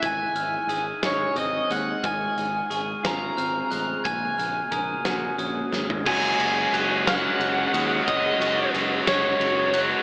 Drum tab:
CC |------------|------------|------------|x-----------|
RD |------------|------------|------------|--x-x-x-x-x-|
HH |x-x-x-x-x-x-|x-x-x-x-x-x-|x-x-x-x-x---|------------|
SD |------o-----|------o-----|------o---o-|------o-----|
FT |------------|------------|-----------o|------------|
BD |o-----------|o-----------|o---o-------|o-----------|

CC |------------|
RD |x-x-x-x-x-x-|
HH |------------|
SD |------o-----|
FT |------------|
BD |o-----------|